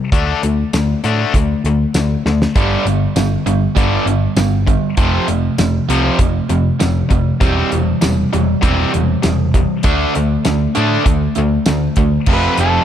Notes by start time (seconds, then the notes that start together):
0.12 D2 D3 A3 D4, kick, closed hi-hat
0.43 D2 D3 A3, closed hi-hat
0.73 D2 D3 A3, snare, closed hi-hat, tambourine
1.04 A2 D3 A3 D4, closed hi-hat
1.34 D2 D3 A3, kick, closed hi-hat
1.64 D2 D3 A3, closed hi-hat
1.94 D2 D3 A3, snare, closed hi-hat, tambourine
2.26 D2 D3 A3, snare
2.42 snare
2.55 G1 G2 D3 G3 B3 D4, kick, closed hi-hat
2.85 G1 G2 D3 G3 B3, closed hi-hat
3.16 G1 G2 D3 G3 B3, snare, closed hi-hat, tambourine
3.46 G1 G2 D3 G3 B3, closed hi-hat
3.75 G1 G2 D3 G3 B3 D4, kick, closed hi-hat
4.06 G1 G2 D3 G3 B3, closed hi-hat
4.36 G1 G2 D3 G3 B3, snare, closed hi-hat, tambourine
4.67 G2 D3 G3 B3, kick, closed hi-hat
4.97 F1 F2 C3 F3 A3 C4, kick, closed hi-hat
5.28 F1 F2 C3 F3 A3, closed hi-hat
5.58 F1 F2 C3 F3 A3, snare, closed hi-hat, tambourine
5.89 C2 F2 C3 F3 A3 C4, closed hi-hat
6.19 F1 F2 C3 F3 A3, kick, closed hi-hat
6.49 F1 F2 C3 F3 A3, closed hi-hat
6.80 F1 F2 C3 F3 A3, snare, closed hi-hat, tambourine
7.09 F1 F2 C3 F3 A3, kick, closed hi-hat
7.40 E1 C3 E3 G3 C4, kick, closed hi-hat
7.71 E1 C3 E3 G3, closed hi-hat
8.01 E1 C3 E3 G3, snare, closed hi-hat, tambourine
8.33 E1 C3 E3 G3, closed hi-hat
8.61 E1 C3 E3 G3 C4, kick, closed hi-hat
8.92 E1 C3 E3 G3, closed hi-hat
9.22 E1 C3 E3 G3, snare, closed hi-hat, tambourine
9.54 C3 E3 G3, kick, closed hi-hat
9.83 D2 D3 A3 D4, kick, closed hi-hat
10.15 D2 D3 A3, closed hi-hat
10.45 D2 D3 A3, snare, closed hi-hat, tambourine
10.75 A2 D3 A3 D4, closed hi-hat
11.04 D2 D3 A3, kick, closed hi-hat
11.35 D2 D3 A3, closed hi-hat
11.66 D2 D3 A3, snare, closed hi-hat, tambourine
11.96 D2 D3 A3, kick, closed hi-hat
12.26 F1 F2 C3 F3 A3 C4 F4, kick, crash
12.34 B4
12.57 F1 A4, closed hi-hat